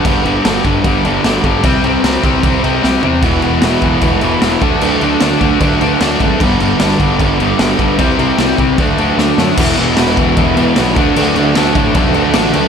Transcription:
<<
  \new Staff \with { instrumentName = "Distorted electric guitar" } { \clef bass \time 4/4 \key d \lydian \tempo 4 = 151 r1 | r1 | <e gis b e'>2~ <e gis b e'>8 <e gis b e'>8 <e gis b e'>8 <d fis a d'>8~ | <d fis a d'>2 <d fis a d'>8 <d fis a d'>4 r8 |
<g, d g b d'>2~ <g, d g b d'>8 <g, d g b d'>8 <g, d g b d'>4 | <c g c' e'>2 <d fis a d'>2 | <e gis b e'>2~ <e gis b e'>8 <e gis b e'>8 <e gis b e'>8 <d fis a d'>8~ | <d fis a d'>2 <d fis a d'>8 <d fis a d'>4 r8 | }
  \new Staff \with { instrumentName = "Distorted electric guitar" } { \clef bass \time 4/4 \key d \lydian <g, d g>8 <g, d g>8 <g, d g>8 <g, d g>8 <g, d g>8 <g, d g>8 <g, d g>8 <g, d g>8 | <c g c'>8 <c g c'>8 <c g c'>8 <c g c'>8 <c g c'>8 <c g c'>8 <c g c'>8 <c g c'>8 | <e, b, e>8 <e, b, e>8 <e, b, e>8 <e, b, e>8 <e, b, e>8 <e, b, e>8 <e, b, e>8 <d a d'>8 | <d a d'>8 <d a d'>8 <d a d'>8 <d a d'>8 <d a d'>8 <d a d'>8 <d a d'>8 <d a d'>8 |
<g, d g>8 <g, d g>8 <g, d g>8 <g, d g>8 <g, d g>8 <g, d g>8 <g, d g>8 <g, d g>8 | <c g c'>8 <c g c'>8 <c g c'>8 <c g c'>8 <d a d'>8 <d a d'>8 <d a d'>8 <d a d'>8 | <e, b, e>8 <e, b, e>8 <e, b, e>8 <e, b, e>8 <e, b, e>8 <e, b, e>8 <e, b, e>8 <d a d'>8 | <d a d'>8 <d a d'>8 <d a d'>8 <d a d'>8 <d a d'>8 <d a d'>8 <d a d'>8 <d a d'>8 | }
  \new Staff \with { instrumentName = "Distorted electric guitar" } { \clef bass \time 4/4 \key d \lydian <g, d g>8 <g, d g>8 <g, d g>8 <g, d g>8 <g, d g>8 <g, d g>8 <g, d g>8 <g, d g>8 | <c g c'>8 <c g c'>8 <c g c'>8 <c g c'>8 <c g c'>8 <c g c'>8 <c g c'>8 <c g c'>8 | <e, b, e>8 <e, b, e>8 <e, b, e>8 <e, b, e>8 <e, b, e>8 <e, b, e>8 <e, b, e>8 <d a d'>8 | <d a d'>8 <d a d'>8 <d a d'>8 <d a d'>8 <d a d'>8 <d a d'>8 <d a d'>8 <d a d'>8 |
<g, d g>8 <g, d g>8 <g, d g>8 <g, d g>8 <g, d g>8 <g, d g>8 <g, d g>8 <g, d g>8 | <c g c'>8 <c g c'>8 <c g c'>8 <c g c'>8 <d a d'>8 <d a d'>8 <d a d'>8 <d a d'>8 | <e, b, e>8 <e, b, e>8 <e, b, e>8 <e, b, e>8 <e, b, e>8 <e, b, e>8 <e, b, e>8 <d a d'>8 | <d a d'>8 <d a d'>8 <d a d'>8 <d a d'>8 <d a d'>8 <d a d'>8 <d a d'>8 <d a d'>8 | }
  \new Staff \with { instrumentName = "Picked electric bass" } { \clef bass \time 4/4 \key d \lydian g,,8 g,,8 g,,8 g,,8 g,,8 g,,8 g,,8 g,,8 | c,8 c,8 c,8 c,8 c,8 c,8 c,8 e,8 | e,,8 e,,8 e,,8 e,,8 e,,8 e,,8 e,,8 d,8 | d,8 d,8 d,8 d,8 d,8 d,8 d,8 gis,,8 |
g,,8 g,,8 g,,8 g,,8 g,,8 g,,8 g,,8 g,,8 | c,8 c,8 c,8 c,8 d,8 d,8 d,8 fis,8 | e,,8 e,,8 e,,4 e,,8 e,8 b,,8 d,8 | d,8 d,8 d,8 a,8 b,,8 d,8 a,,8 d,8 | }
  \new DrumStaff \with { instrumentName = "Drums" } \drummode { \time 4/4 <cymc bd>8 cymc8 <cymc sn>8 <cymc bd>8 <cymc bd>8 cymc8 <cymc sn>8 <cymc bd>8 | <cymc bd>8 cymc8 <cymc sn>8 <cymc bd>8 <cymc bd>8 cymc8 sn8 tomfh8 | <cymc bd>8 cymc8 <cymc sn>8 <cymc bd>8 <cymc bd>8 cymc8 <cymc sn>8 <cymc bd>8 | cymc8 cymc8 <cymc sn>8 <cymc bd>8 <cymc bd>8 cymc8 <cymc sn>8 <cymc bd>8 |
<cymc bd>8 cymc8 <cymc sn>8 <cymc bd>8 <cymc bd>8 cymc8 <cymc sn>8 <cymc bd>8 | <cymc bd>8 cymc8 <cymc sn>8 <cymc bd>8 <cymc bd>8 cymc8 sn8 sn8 | <cymc bd>8 cymc8 <cymc sn>8 <cymc bd>8 <cymc bd>8 cymc8 <cymc sn>8 <cymc bd>8 | cymc8 cymc8 <cymc sn>8 <cymc bd>8 <cymc bd>8 cymc8 <cymc sn>8 cymc8 | }
>>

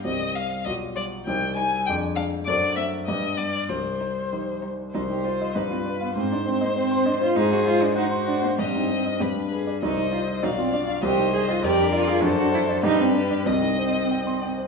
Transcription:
<<
  \new Staff \with { instrumentName = "Violin" } { \time 2/4 \key c \minor \tempo 4 = 98 ees''8 f''8 ees''8 d''8 | g''8 aes''8 g''8 f''8 | d''8 e''8 ees''8 d''8 | c''4. r8 |
c''4 b'4 | c''4 c''4 | c''4 c''4 | ees''4 b'8 r8 |
c''4 f''4 | ees''4 d''4 | c''4 b'4 | ees''4. r8 | }
  \new Staff \with { instrumentName = "Grand piano" } { \time 2/4 \key c \minor <c, c' g' c''>4 <b,, f' g' d''>4 | <c, ees' g' c''>4 <f, d' aes' d''>4 | <fis, d' a' c''>4 <g, d' g' b'>4 | c,4 <ees' g' c''>4 |
c,16 ees'16 c''16 ees''16 g,16 f'16 b'16 f''16 | aes,16 ees'16 c''16 ees''16 c''16 c'''16 ees''16 c''16 | aes,16 ees'16 c''16 ees''16 ges''16 c'''16 ges''16 c''16 | g,16 ees'16 c''16 ees''16 g,16 d'16 b'16 d''16 |
c,16 ees'16 c''16 ees''16 b,,16 f'16 d''16 f''16 | c,16 ees'16 c''16 ees''16 f,16 d'16 d''16 aes'16 | fis,16 d'16 c''16 d''16 g,16 d'16 b'16 d''16 | c,16 ees'16 c''16 ees''16 g''16 c'''16 g''16 c''16 | }
  \new Staff \with { instrumentName = "Violin" } { \time 2/4 \key c \minor r8 c'8 r8 f'8 | r8 ees'8 r8 d'8 | r8 c'8 r8 b8 | r8 ees'8 r8 ees'8 |
c''4 b'4 | c''2 | aes'4 ges'4 | g'4 g'8 aes'8 |
ees''4 d''4 | c''4 bes'4 | a'4 g'4 | ees''4. r8 | }
  \new Staff \with { instrumentName = "Cello" } { \time 2/4 \key c \minor r8 g8 r8 g8 | r8 g8 r8 aes8 | r8 a8 r8 g8 | r8 g8 f8 g8 |
ees'16 g'16 f'8 ees'16 c'16 d'16 b16 | c'16 d'16 c'16 bes16 c'8 d'16 f'16 | ees'16 ges'16 f'16 d'16 ees'8 d'16 bes16 | c'4 r4 |
ees'8 f'8 ees'16 c'16 d'8 | g'8 aes'16 f'16 g'8 f'8 | d'16 fis'16 e'8 ees'16 c'16 d'8 | c'4. r8 | }
>>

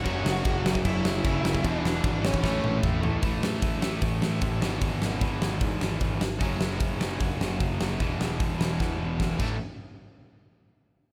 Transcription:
<<
  \new Staff \with { instrumentName = "Lead electric guitar" } { \time 4/4 \key a \major \tempo 4 = 151 <fis' fis''>2 <e' e''>2 | <d' d''>4. <cis' cis''>4. r4 | r1 | r1 |
r1 | r1 | r1 | }
  \new Staff \with { instrumentName = "Distorted electric guitar" } { \clef bass \time 4/4 \key a \major <fis, cis fis>4. <fis, cis fis>4. <fis, cis fis>4 | <e, b, e>4. <e, b, e>8 <a, e a>4. <a, e a>8 | <a, e a>4. <a, e a>2 <e, b, e>8~ | <e, b, e>4 <e, b, e>2~ <e, b, e>8 r8 |
<fis, cis fis>4. <fis, cis fis>2~ <fis, cis fis>8 | <e, b, e>4. <e, b, e>2 <a, e a>8 | r1 | }
  \new Staff \with { instrumentName = "Overdriven electric guitar" } { \clef bass \time 4/4 \key a \major <fis, cis fis>2~ <fis, cis fis>8 <fis, cis fis>8 <fis, cis fis>4 | <e, b, e>2 <a, e a>2 | <a, e a>2.~ <a, e a>8 <e, b, e>8~ | <e, b, e>2.~ <e, b, e>8 r8 |
<fis, cis fis>1 | <e, b, e>2.~ <e, b, e>8 <a, e a>8 | r1 | }
  \new Staff \with { instrumentName = "Overdriven electric guitar" } { \clef bass \time 4/4 \key a \major <fis, cis fis>1 | <e, b, e>2 <a, e a>2 | r1 | r1 |
r1 | r1 | r1 | }
  \new Staff \with { instrumentName = "Picked electric bass" } { \clef bass \time 4/4 \key a \major fis,,8 fis,,8 fis,,8 fis,,8 fis,,8 fis,,8 fis,,8 fis,,8 | e,,8 e,,8 gis,,4 a,,8 a,,8 a,,8 a,,8 | a,,8 a,,8 a,,4 a,,8 a,,8 a,,8 gis,,8 | gis,,8 gis,,8 gis,,8 gis,,8 gis,8 gis,,8 gis,,8 gis,,8 |
fis,,8 fis,,8 fis,,4 fis,,8 fis,,8 fis,,8 fis,,8 | e,,8 e,,8 e,,8 e,,8 e,8 e,,8 e,,8 a,,8 | r1 | }
  \new DrumStaff \with { instrumentName = "Drums" } \drummode { \time 4/4 <cymc bd>8 sn8 <cymc bd>8 sn16 bd16 <cymc bd>8 sn8 <cymc bd>8 sn16 bd16 | <cymc bd>8 sn8 <cymc bd>8 sn16 bd16 <bd sn>8 tommh8 <bd toml>8 tomfh8 | <hho bd>8 sn8 <hho bd>8 sn8 <hho bd>8 sn8 <hho bd>8 sn8 | <hho bd>8 sn8 <hho bd>8 sn8 <hho bd>8 sn8 <hho bd>8 sn8 |
<hho bd>8 sn8 <hho bd>8 sn8 <hho bd>8 sn8 <hho bd>8 sn8 | <hho bd>8 sn8 <hho bd>8 sn8 <bd sn>4 <bd sn>8 <cymc bd>8 | r4 r4 r4 r4 | }
>>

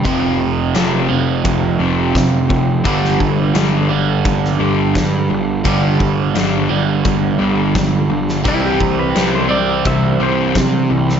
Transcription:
<<
  \new Staff \with { instrumentName = "Electric slide guitar" } { \time 4/4 \key f \lydian \tempo 4 = 86 g''4 r2. | r1 | r1 | e'16 g'8 b'8 c''16 d''8 e''8 c''8 r4 | }
  \new Staff \with { instrumentName = "Overdriven electric guitar" } { \clef bass \time 4/4 \key f \lydian <f, c f>4. <f, c f>2~ <f, c f>8 | <g, d g>4. <g, d g>2~ <g, d g>8 | <g, d g>4. <g, d g>2~ <g, d g>8 | <c g c'>4. <c g c'>2~ <c g c'>8 | }
  \new Staff \with { instrumentName = "Overdriven electric guitar" } { \clef bass \time 4/4 \key f \lydian <f, c f>8 <f, c>8 <f, c f>8 <f, c>8 <f, c>8 <f, c f>8 <f, c>8 <f, c>8 | <g, d g>8 <g, d>8 <g, d g>8 <g, d>8 <g, d>8 <g, d g>8 <g, d>8 <g, d>8 | <g, d g>8 <g, d>8 <g, d g>8 <g, d>8 <g, d>8 <g, d g>8 <g, d>8 <g, d>8 | <c e g>8 <c e>8 <c e g>8 <c e>8 <c e>8 <c e g>8 <c e>8 <c e>8 | }
  \new Staff \with { instrumentName = "Picked electric bass" } { \clef bass \time 4/4 \key f \lydian f,,4 f,,8 f,,8 f,,8 f,,8 f,,8 f,,8 | g,,8 g,,8 g,,4 g,,8 g,,8 g,8 g,,8 | g,,4 g,,8 g,,8 g,,8 g,,8 g,,8 g,,8 | c,8 c,8 c,4 c,8 c,8 c8 c,8 | }
  \new DrumStaff \with { instrumentName = "Drums" } \drummode { \time 4/4 <hh bd>4 <hh sn>4 <hh bd>4 <hh bd sn>8 bd8 | <hh bd>16 sn16 bd8 <hh sn>4 <hh bd>16 sn8. <hh bd sn>4 | <hh bd>8 bd8 <hh sn>4 <hh bd>4 <hh bd sn>8. sn16 | <hh bd>8 bd8 <hh sn>4 <hh bd>4 <hh bd sn>8. sn16 | }
>>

